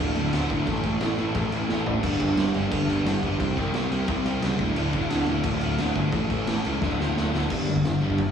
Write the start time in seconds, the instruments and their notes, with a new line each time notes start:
0.00 picked electric bass D1, overdriven electric guitar D2 A2 D3
0.15 picked electric bass D1, overdriven electric guitar D2 A2 D3, crash
0.33 picked electric bass D1, overdriven electric guitar D2 A2 D3, snare, crash
0.50 picked electric bass G1, overdriven electric guitar D2 A2 D3, kick, crash
0.67 picked electric bass A1, overdriven electric guitar A2 E3 A3, kick, crash
0.83 picked electric bass A1, overdriven electric guitar A2 E3 A3, kick, crash
1.01 picked electric bass A1, overdriven electric guitar A2 E3 A3, snare, crash
1.18 picked electric bass A1, overdriven electric guitar A2 E3 A3, crash
1.34 picked electric bass A1, overdriven electric guitar A2 E3 A3, kick, crash
1.52 picked electric bass A1, overdriven electric guitar A2 E3 A3, crash
1.69 picked electric bass A1, overdriven electric guitar A2 E3 A3, snare
1.86 picked electric bass A1, overdriven electric guitar A2 E3 A3, floor tom
2.03 picked electric bass G1, overdriven electric guitar G2 D3 G3, kick, crash
2.20 picked electric bass G1, overdriven electric guitar G2 D3 G3, kick, crash
2.37 picked electric bass G1, overdriven electric guitar G2 D3 G3, snare, crash
2.54 picked electric bass G1, overdriven electric guitar G2 D3 G3, crash
2.70 picked electric bass G1, overdriven electric guitar G2 D3 G3, kick, crash
2.88 picked electric bass G1, overdriven electric guitar G2 D3 G3, crash
3.05 picked electric bass G1, overdriven electric guitar G2 D3 G3, snare, crash
3.22 picked electric bass G1, overdriven electric guitar G2 D3 G3, kick, crash
3.40 picked electric bass C2, overdriven electric guitar C3 G3 C4, kick, crash
3.57 picked electric bass C2, overdriven electric guitar C3 G3 C4, kick, crash
3.74 picked electric bass C2, overdriven electric guitar C3 G3 C4, snare, crash
3.92 picked electric bass C2, overdriven electric guitar C3 G3 C4, crash
4.08 picked electric bass C2, overdriven electric guitar C3 G3 C4, kick, crash
4.25 picked electric bass C2, overdriven electric guitar C3 G3 C4, crash
4.42 picked electric bass C#2, overdriven electric guitar C3 G3 C4, snare, crash
4.59 picked electric bass D1, overdriven electric guitar D2 A2 D3, kick, crash
4.76 picked electric bass D1, overdriven electric guitar D2 A2 D3, crash
4.93 picked electric bass D1, overdriven electric guitar D2 A2 D3, kick, crash
5.10 picked electric bass D1, overdriven electric guitar D2 A2 D3, snare, crash
5.26 picked electric bass D1, overdriven electric guitar D2 A2 D3, crash
5.43 picked electric bass D1, overdriven electric guitar D2 A2 D3, kick, crash
5.61 picked electric bass D1, overdriven electric guitar D2 A2 D3, crash
5.78 picked electric bass D1, overdriven electric guitar D2 A2 D3, snare, crash
5.95 picked electric bass G1, overdriven electric guitar D2 A2 D3, kick, crash
6.12 picked electric bass A1, overdriven electric guitar A2 E3 A3, kick, crash
6.30 picked electric bass A1, overdriven electric guitar A2 E3 A3, kick, crash
6.47 picked electric bass A1, overdriven electric guitar A2 E3 A3, snare, crash
6.64 picked electric bass C#2, overdriven electric guitar A2 E3 A3, crash
6.81 picked electric bass D1, overdriven electric guitar D2 A2 D3, kick, snare
6.99 picked electric bass D1, overdriven electric guitar D2 A2 D3, snare
7.17 picked electric bass D1, overdriven electric guitar D2 A2 D3, snare
7.34 picked electric bass D1, overdriven electric guitar D2 A2 D3, snare
7.50 picked electric bass G1, overdriven electric guitar G2 D3 G3, kick, crash
7.68 picked electric bass G1, overdriven electric guitar G2 D3
7.76 kick
7.84 picked electric bass G1, overdriven electric guitar G2 D3, snare, crash
8.01 picked electric bass G1, overdriven electric guitar G2 D3 G3
8.10 kick
8.18 picked electric bass G1, overdriven electric guitar G2 D3, kick, crash